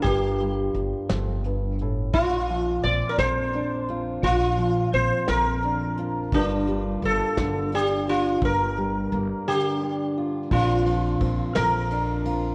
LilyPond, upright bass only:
\new Staff \with { instrumentName = "Upright bass" } { \clef bass \time 6/8 \key bes \major \tempo 4. = 57 g,,4 g,,16 r16 g,,4. | bes,,4 bes,,16 r16 bes,,4. | bes,,4 bes,,16 r16 bes,,4. | g,,4 g,,16 r16 g,,4. |
g,,4 g,,16 r4. r16 | bes,,4 bes,,16 r16 bes,,4. | }